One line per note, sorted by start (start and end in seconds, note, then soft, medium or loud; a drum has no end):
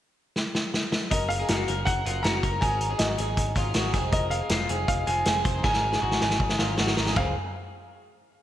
0.36 snare medium
0.55 snare medium
0.74 snare medium
0.92 snare loud
1.11 1.42 F#1 medium
1.11 1.40 F#3 medium
1.11 1.40 C#4 medium
1.11 1.40 D#4 medium
1.11 1.38 A#4 medium
1.11 1.30 D#5 medium
1.11 kick loud
1.11 closed hi-hat medium
1.29 1.87 F5 loud
1.29 closed hi-hat medium
1.39 1.67 C#4 soft
1.39 1.69 D#4 soft
1.39 1.49 G#4 medium
1.39 1.67 A#4 medium
1.48 1.64 F#1 loud
1.48 1.68 F#4 medium
1.48 snare loud
1.48 closed hi-hat loud
1.68 1.83 F#1 loud
1.68 2.03 F#3 medium
1.68 2.05 C#4 medium
1.68 2.07 D#4 medium
1.68 2.03 A#4 medium
1.68 2.07 A#4 medium
1.68 closed hi-hat medium
1.85 2.02 F#1 loud
1.85 2.25 F#5 loud
1.85 kick medium
1.85 closed hi-hat medium
2.05 2.21 F#1 medium
2.05 2.23 F#3 medium
2.05 2.24 C#4 medium
2.05 2.25 D#4 medium
2.05 2.24 F4 medium
2.05 2.25 A#4 medium
2.05 closed hi-hat medium
2.23 2.40 F#1 loud
2.23 2.52 F#3 medium
2.23 2.53 C#4 medium
2.23 2.52 D#4 medium
2.23 2.43 F#4 medium
2.23 2.50 A#4 medium
2.23 2.62 A#5 loud
2.23 snare loud
2.23 closed hi-hat medium
2.43 2.59 F#1 medium
2.43 2.61 A#4 medium
2.43 kick medium
2.43 closed hi-hat medium
2.52 2.61 C#4 soft
2.52 2.62 D#4 soft
2.52 2.61 A#4 medium
2.61 2.93 G#1 medium
2.61 2.90 G#2 medium
2.61 2.90 C#3 medium
2.61 2.90 F#3 medium
2.61 2.90 C#4 medium
2.61 2.89 D#4 medium
2.61 2.88 G#4 medium
2.61 2.89 A#4 loud
2.61 3.00 G#5 medium
2.61 kick loud
2.61 closed hi-hat medium
2.81 closed hi-hat medium
2.89 3.16 F#3 soft
2.89 3.18 C#4 soft
2.89 3.18 D#4 soft
2.89 3.18 G#4 soft
2.89 3.00 G#4 medium
2.99 3.15 G#1 loud
2.99 3.18 F#4 medium
2.99 3.70 D#5 medium
2.99 snare loud
2.99 closed hi-hat loud
3.18 3.34 G#1 medium
3.18 3.54 F#3 medium
3.18 3.55 C#4 medium
3.18 3.57 D#4 medium
3.18 3.54 G#4 medium
3.18 3.58 G#4 medium
3.18 closed hi-hat medium
3.37 3.53 G#1 medium
3.37 kick medium
3.37 closed hi-hat medium
3.55 3.71 G#1 loud
3.55 3.73 F#3 medium
3.55 3.75 C#4 medium
3.55 3.76 D#4 medium
3.55 3.75 F4 medium
3.55 3.76 G#4 medium
3.55 kick medium
3.55 closed hi-hat medium
3.74 3.90 G#1 loud
3.74 3.94 F#3 medium
3.74 3.94 C#4 medium
3.74 3.94 D#4 medium
3.74 3.93 F#4 medium
3.74 snare loud
3.74 closed hi-hat medium
3.78 3.95 G#4 medium
3.94 4.40 F1 medium
3.94 4.41 F3 medium
3.94 4.68 G#3 medium
3.94 4.42 C4 medium
3.94 4.42 D#4 medium
3.94 4.12 G#4 medium
3.94 4.40 G#4 medium
3.94 kick loud
3.94 closed hi-hat medium
4.12 4.41 A#4 medium
4.12 4.32 D#5 loud
4.12 kick loud
4.12 closed hi-hat medium
4.30 4.87 F5 medium
4.30 closed hi-hat medium
4.41 4.68 C4 soft
4.41 4.69 D#4 soft
4.41 4.69 G#4 soft
4.41 4.50 G#4 medium
4.49 4.66 F1 loud
4.49 4.69 F4 loud
4.49 snare loud
4.49 closed hi-hat loud
4.69 4.85 F1 loud
4.69 5.06 G#3 medium
4.69 5.06 C4 medium
4.69 5.08 D#4 medium
4.69 5.05 G#4 medium
4.69 5.09 G#4 medium
4.69 closed hi-hat medium
4.88 5.04 F1 medium
4.88 5.08 F5 loud
4.88 kick medium
4.88 closed hi-hat medium
5.06 5.23 F1 loud
5.06 5.24 G#3 medium
5.06 5.25 C4 medium
5.06 5.26 D#4 medium
5.06 5.26 F4 medium
5.06 5.27 G#4 medium
5.06 5.62 G#5 loud
5.06 closed hi-hat medium
5.25 5.42 F1 loud
5.25 5.54 G#3 medium
5.25 5.55 C4 medium
5.25 5.55 D#4 medium
5.25 5.44 G#4 medium
5.25 5.53 G#4 medium
5.25 snare loud
5.25 closed hi-hat medium
5.45 5.61 F1 medium
5.45 5.63 C5 medium
5.45 kick loud
5.45 closed hi-hat medium
5.54 5.64 C4 soft
5.54 5.64 D#4 soft
5.54 5.64 G#4 medium
5.63 5.95 G#1 loud
5.63 5.92 G#2 medium
5.63 5.93 C#3 medium
5.63 5.93 F#3 medium
5.63 5.92 C#4 medium
5.63 5.92 D#4 medium
5.63 5.91 G#4 medium
5.63 5.91 A#4 medium
5.63 6.74 G#5 loud
5.63 kick loud
5.63 snare medium
5.73 snare medium
5.92 6.19 F#3 soft
5.92 6.21 C#4 medium
5.92 6.21 D#4 medium
5.92 6.21 G#4 medium
5.92 6.01 G#4 medium
5.92 snare medium
6.02 6.18 G#1 loud
6.02 6.21 F#4 loud
6.11 snare medium
6.20 6.37 G#1 loud
6.20 6.57 F#3 medium
6.20 6.59 C#4 medium
6.20 6.60 D#4 medium
6.20 6.57 G#4 medium
6.20 6.61 G#4 medium
6.20 snare medium
6.30 snare medium
6.40 6.56 G#1 medium
6.40 kick medium
6.49 snare medium
6.59 6.75 G#1 loud
6.59 6.76 F#3 medium
6.59 6.77 C#4 medium
6.59 6.78 D#4 medium
6.59 6.78 F4 medium
6.59 6.79 G#4 medium
6.59 snare medium
6.77 6.94 G#1 loud
6.77 7.06 F#3 medium
6.77 7.07 C#4 medium
6.77 7.07 D#4 medium
6.77 6.96 F#4 medium
6.77 7.06 G#4 medium
6.77 snare loud
6.87 snare medium
6.97 7.13 G#1 medium
6.97 7.16 A#4 medium
6.97 snare loud
7.06 7.17 C#4 medium
7.06 7.17 D#4 medium
7.06 7.16 G#4 medium
7.06 snare loud
7.10 7.16 F#3 soft
7.16 7.34 C#2 medium
7.16 7.31 C#3 medium
7.16 7.32 G#3 medium
7.16 7.32 C4 medium
7.16 7.32 F4 medium
7.16 7.34 G#4 medium
7.16 7.32 G#4 medium
7.16 7.34 F5 medium
7.16 kick medium
7.16 floor tom loud
7.16 crash medium